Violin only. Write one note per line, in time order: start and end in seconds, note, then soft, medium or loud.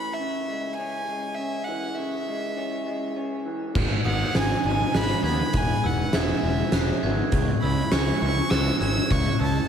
0.00 0.15 B5 medium
0.14 0.75 E5 soft
0.74 1.36 G#5 medium
1.35 1.66 E5 medium
1.64 1.97 F#5 medium
1.95 3.15 E5 medium
4.06 4.38 F#5 medium
4.36 4.65 G#5 medium
4.66 4.98 G#5 medium
4.96 5.25 B5 medium
5.25 5.58 B5 medium
5.57 5.88 G#5 medium
5.86 6.16 F#5 medium
6.14 7.03 E5 medium
7.62 7.93 B5 medium
7.92 8.21 C#6 medium
8.22 8.52 C#6 medium
8.50 8.80 E6 medium
8.81 9.13 E6 medium
9.11 9.41 C#6 medium
9.42 9.68 A5 medium